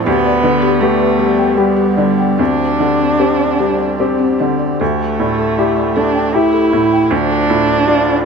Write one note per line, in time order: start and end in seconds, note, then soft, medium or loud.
0.00 2.38 D5 soft
0.06 2.35 D2 medium
0.06 0.82 B3 loud
0.06 2.39 B3 medium
0.06 0.18 G4 medium
0.06 4.78 G4 medium
0.25 0.36 D5 medium
0.43 1.04 D3 medium
0.43 0.55 B4 medium
0.62 0.74 G4 medium
0.81 1.59 A3 medium
0.81 1.16 B3 soft
0.81 1.16 G4 medium
0.81 0.93 B4 medium
1.00 1.11 B4 medium
1.19 1.81 G3 soft
1.19 1.31 G4 medium
1.38 1.50 G5 medium
1.57 2.40 G3 medium
1.57 1.94 B3 soft
1.57 1.94 G4 soft
1.57 1.69 G5 soft
1.77 1.89 G4 medium
1.97 2.39 D3 soft
1.97 2.10 D5 soft
2.18 2.31 G5 soft
2.38 4.76 D2 soft
2.38 2.51 C4 medium
2.38 4.80 C4 soft
2.38 4.40 D4 medium
2.38 4.77 D5 soft
2.59 2.71 C5 soft
2.79 3.44 D3 soft
2.79 2.91 G4 soft
2.99 3.11 C4 medium
3.19 3.56 C4 soft
3.19 3.31 G4 soft
3.19 3.56 G4 soft
3.39 3.51 G4 soft
3.59 4.24 G3 soft
3.59 3.71 C4 medium
3.79 3.91 D5 soft
3.98 4.36 C4 soft
3.98 4.36 G4 soft
3.98 4.11 D5 soft
4.19 4.31 C4 medium
4.39 4.81 D3 soft
4.39 4.52 C5 soft
4.59 4.72 D5 soft
4.80 7.08 D2 soft
4.80 8.25 A3 soft
4.80 5.97 A3 medium
4.80 7.08 G4 soft
4.80 4.92 A4 medium
4.80 7.11 E5 soft
5.00 5.12 E5 soft
5.19 5.81 A2 soft
5.19 5.31 D5 soft
5.39 5.50 A4 medium
5.58 5.93 E4 soft
5.58 5.93 G4 soft
5.58 5.70 D5 soft
5.76 5.88 D5 soft
5.96 6.58 A3 soft
5.96 6.36 D4 medium
5.96 6.08 A4 medium
6.15 6.26 G5 soft
6.34 6.69 E4 soft
6.34 7.13 E4 medium
6.34 6.69 G4 soft
6.34 6.46 G5 soft
6.53 6.65 A4 medium
6.72 7.12 A2 soft
6.72 6.84 E5 medium
6.92 7.04 G5 medium
7.11 8.25 D2 medium
7.11 7.23 D4 medium
7.11 8.24 D4 loud
7.11 8.25 F4 soft
7.11 8.25 C5 medium
7.30 7.42 A4 medium
7.50 8.09 A2 soft
7.50 7.61 F4 medium
7.69 7.80 D4 medium
7.87 8.21 D4 soft
7.87 8.21 F4 medium
7.87 7.99 F4 medium
8.06 8.17 F4 medium